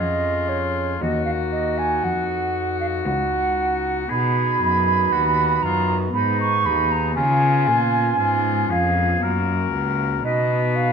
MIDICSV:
0, 0, Header, 1, 5, 480
1, 0, Start_track
1, 0, Tempo, 1025641
1, 475, Time_signature, 3, 2, 24, 8
1, 5113, End_track
2, 0, Start_track
2, 0, Title_t, "Flute"
2, 0, Program_c, 0, 73
2, 0, Note_on_c, 0, 75, 70
2, 228, Note_on_c, 0, 73, 58
2, 235, Note_off_c, 0, 75, 0
2, 471, Note_on_c, 0, 75, 68
2, 478, Note_off_c, 0, 73, 0
2, 582, Note_off_c, 0, 75, 0
2, 585, Note_on_c, 0, 77, 61
2, 613, Note_off_c, 0, 77, 0
2, 709, Note_on_c, 0, 75, 68
2, 834, Note_on_c, 0, 80, 71
2, 841, Note_off_c, 0, 75, 0
2, 955, Note_on_c, 0, 78, 66
2, 962, Note_off_c, 0, 80, 0
2, 1309, Note_off_c, 0, 78, 0
2, 1311, Note_on_c, 0, 77, 70
2, 1340, Note_off_c, 0, 77, 0
2, 1436, Note_on_c, 0, 78, 75
2, 1910, Note_off_c, 0, 78, 0
2, 1919, Note_on_c, 0, 83, 85
2, 2632, Note_on_c, 0, 82, 75
2, 2639, Note_off_c, 0, 83, 0
2, 2789, Note_off_c, 0, 82, 0
2, 2872, Note_on_c, 0, 83, 82
2, 2984, Note_off_c, 0, 83, 0
2, 2997, Note_on_c, 0, 85, 82
2, 3116, Note_on_c, 0, 83, 85
2, 3123, Note_off_c, 0, 85, 0
2, 3238, Note_on_c, 0, 82, 77
2, 3245, Note_off_c, 0, 83, 0
2, 3346, Note_off_c, 0, 82, 0
2, 3349, Note_on_c, 0, 80, 93
2, 4055, Note_off_c, 0, 80, 0
2, 4076, Note_on_c, 0, 77, 73
2, 4309, Note_off_c, 0, 77, 0
2, 4795, Note_on_c, 0, 75, 77
2, 5034, Note_on_c, 0, 77, 78
2, 5041, Note_off_c, 0, 75, 0
2, 5113, Note_off_c, 0, 77, 0
2, 5113, End_track
3, 0, Start_track
3, 0, Title_t, "Oboe"
3, 0, Program_c, 1, 68
3, 0, Note_on_c, 1, 65, 64
3, 475, Note_off_c, 1, 65, 0
3, 478, Note_on_c, 1, 66, 61
3, 1917, Note_on_c, 1, 68, 65
3, 1924, Note_off_c, 1, 66, 0
3, 2398, Note_on_c, 1, 66, 62
3, 2405, Note_off_c, 1, 68, 0
3, 2636, Note_off_c, 1, 66, 0
3, 2642, Note_on_c, 1, 65, 58
3, 2790, Note_off_c, 1, 65, 0
3, 2880, Note_on_c, 1, 63, 65
3, 3336, Note_off_c, 1, 63, 0
3, 3352, Note_on_c, 1, 65, 67
3, 3822, Note_off_c, 1, 65, 0
3, 3832, Note_on_c, 1, 65, 63
3, 4074, Note_on_c, 1, 68, 64
3, 4081, Note_off_c, 1, 65, 0
3, 4316, Note_on_c, 1, 70, 76
3, 4323, Note_off_c, 1, 68, 0
3, 4794, Note_off_c, 1, 70, 0
3, 4797, Note_on_c, 1, 71, 76
3, 5113, Note_off_c, 1, 71, 0
3, 5113, End_track
4, 0, Start_track
4, 0, Title_t, "Pipe organ"
4, 0, Program_c, 2, 19
4, 0, Note_on_c, 2, 41, 45
4, 0, Note_on_c, 2, 61, 38
4, 0, Note_on_c, 2, 68, 37
4, 446, Note_off_c, 2, 61, 0
4, 450, Note_off_c, 2, 68, 0
4, 453, Note_on_c, 2, 58, 41
4, 455, Note_off_c, 2, 41, 0
4, 459, Note_on_c, 2, 63, 40
4, 466, Note_on_c, 2, 66, 40
4, 474, Note_on_c, 2, 39, 46
4, 926, Note_off_c, 2, 58, 0
4, 932, Note_off_c, 2, 39, 0
4, 953, Note_on_c, 2, 41, 47
4, 1413, Note_off_c, 2, 41, 0
4, 1430, Note_on_c, 2, 37, 47
4, 1891, Note_off_c, 2, 63, 0
4, 1894, Note_off_c, 2, 66, 0
4, 1894, Note_on_c, 2, 59, 43
4, 1898, Note_off_c, 2, 37, 0
4, 1902, Note_on_c, 2, 63, 44
4, 1909, Note_on_c, 2, 66, 44
4, 1916, Note_on_c, 2, 47, 48
4, 2138, Note_off_c, 2, 47, 0
4, 2156, Note_on_c, 2, 42, 48
4, 2377, Note_off_c, 2, 42, 0
4, 2398, Note_on_c, 2, 39, 55
4, 2617, Note_off_c, 2, 39, 0
4, 2637, Note_on_c, 2, 42, 53
4, 2843, Note_off_c, 2, 59, 0
4, 2847, Note_off_c, 2, 63, 0
4, 2851, Note_off_c, 2, 66, 0
4, 2856, Note_off_c, 2, 42, 0
4, 2857, Note_on_c, 2, 59, 44
4, 2865, Note_on_c, 2, 63, 41
4, 2873, Note_on_c, 2, 68, 44
4, 2878, Note_on_c, 2, 44, 48
4, 3096, Note_off_c, 2, 44, 0
4, 3115, Note_on_c, 2, 39, 48
4, 3326, Note_off_c, 2, 59, 0
4, 3333, Note_off_c, 2, 63, 0
4, 3334, Note_off_c, 2, 39, 0
4, 3335, Note_on_c, 2, 59, 47
4, 3337, Note_off_c, 2, 68, 0
4, 3343, Note_on_c, 2, 61, 44
4, 3351, Note_on_c, 2, 65, 49
4, 3355, Note_on_c, 2, 49, 53
4, 3574, Note_off_c, 2, 49, 0
4, 3594, Note_on_c, 2, 46, 50
4, 3814, Note_off_c, 2, 46, 0
4, 3831, Note_on_c, 2, 44, 54
4, 4052, Note_off_c, 2, 44, 0
4, 4075, Note_on_c, 2, 41, 55
4, 4284, Note_off_c, 2, 59, 0
4, 4288, Note_off_c, 2, 61, 0
4, 4291, Note_off_c, 2, 65, 0
4, 4291, Note_on_c, 2, 58, 43
4, 4294, Note_off_c, 2, 41, 0
4, 4299, Note_on_c, 2, 61, 45
4, 4306, Note_on_c, 2, 66, 45
4, 4312, Note_on_c, 2, 42, 50
4, 4533, Note_off_c, 2, 42, 0
4, 4550, Note_on_c, 2, 37, 45
4, 4767, Note_off_c, 2, 58, 0
4, 4771, Note_off_c, 2, 61, 0
4, 4771, Note_on_c, 2, 59, 46
4, 4772, Note_off_c, 2, 37, 0
4, 4774, Note_off_c, 2, 66, 0
4, 4777, Note_on_c, 2, 63, 45
4, 4786, Note_on_c, 2, 66, 47
4, 4792, Note_on_c, 2, 47, 47
4, 5113, Note_off_c, 2, 47, 0
4, 5113, Note_off_c, 2, 59, 0
4, 5113, Note_off_c, 2, 63, 0
4, 5113, Note_off_c, 2, 66, 0
4, 5113, End_track
5, 0, Start_track
5, 0, Title_t, "Cello"
5, 0, Program_c, 3, 42
5, 0, Note_on_c, 3, 41, 55
5, 456, Note_off_c, 3, 41, 0
5, 475, Note_on_c, 3, 39, 60
5, 933, Note_off_c, 3, 39, 0
5, 948, Note_on_c, 3, 41, 54
5, 1410, Note_off_c, 3, 41, 0
5, 1429, Note_on_c, 3, 37, 58
5, 1898, Note_off_c, 3, 37, 0
5, 1916, Note_on_c, 3, 47, 61
5, 2140, Note_off_c, 3, 47, 0
5, 2159, Note_on_c, 3, 42, 57
5, 2392, Note_off_c, 3, 42, 0
5, 2398, Note_on_c, 3, 39, 60
5, 2631, Note_off_c, 3, 39, 0
5, 2636, Note_on_c, 3, 42, 60
5, 2870, Note_off_c, 3, 42, 0
5, 2874, Note_on_c, 3, 44, 59
5, 3114, Note_on_c, 3, 39, 60
5, 3121, Note_off_c, 3, 44, 0
5, 3353, Note_on_c, 3, 49, 67
5, 3360, Note_off_c, 3, 39, 0
5, 3591, Note_on_c, 3, 46, 62
5, 3598, Note_off_c, 3, 49, 0
5, 3825, Note_off_c, 3, 46, 0
5, 3828, Note_on_c, 3, 44, 56
5, 4064, Note_off_c, 3, 44, 0
5, 4067, Note_on_c, 3, 41, 66
5, 4304, Note_off_c, 3, 41, 0
5, 4309, Note_on_c, 3, 42, 62
5, 4545, Note_off_c, 3, 42, 0
5, 4550, Note_on_c, 3, 37, 63
5, 4786, Note_off_c, 3, 37, 0
5, 4790, Note_on_c, 3, 47, 65
5, 5113, Note_off_c, 3, 47, 0
5, 5113, End_track
0, 0, End_of_file